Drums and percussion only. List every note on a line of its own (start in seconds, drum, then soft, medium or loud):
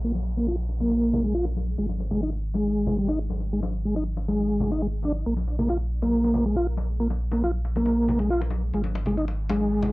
0.15 muted conga medium
0.15 high conga medium
0.37 muted conga medium
0.47 high conga medium
0.69 muted conga soft
0.80 high conga medium
0.91 muted conga medium
1.13 high conga medium
1.13 low conga medium
1.24 muted conga soft
1.45 muted conga medium
1.57 high conga medium
1.78 muted conga soft
1.89 high conga medium
2.00 muted conga medium
2.11 low conga medium
2.22 high conga medium
2.32 muted conga soft
2.54 muted conga medium
2.54 high conga medium
2.87 muted conga soft
2.87 high conga medium
2.87 low conga medium
3.08 muted conga medium
3.30 high conga medium
3.40 muted conga soft
3.63 muted conga medium
3.63 high conga medium
3.95 muted conga soft
3.95 high conga medium
4.17 muted conga medium
4.28 high conga medium
4.49 muted conga soft
4.60 high conga medium
4.60 low conga medium
4.71 muted conga medium
5.03 muted conga soft
5.03 high conga medium
5.37 high conga medium
5.47 muted conga soft
5.59 low conga medium
5.69 muted conga medium
5.69 high conga medium
6.02 muted conga soft
6.02 high conga medium
6.24 muted conga medium
6.34 high conga medium
6.34 low conga medium
6.56 muted conga soft
6.77 muted conga medium
6.77 high conga medium
7.10 muted conga medium
7.10 high conga medium
7.32 muted conga medium
7.44 high conga medium
7.65 muted conga soft
7.76 high conga medium
7.86 muted conga medium
8.08 high conga medium
8.08 low conga medium
8.19 muted conga medium
8.41 muted conga medium
8.50 high conga medium
8.74 muted conga soft
8.84 high conga medium
8.95 muted conga medium
9.06 low conga medium
9.18 high conga medium
9.28 muted conga medium
9.49 muted conga medium
9.49 high conga medium
9.82 muted conga soft
9.82 high conga medium
9.82 low conga medium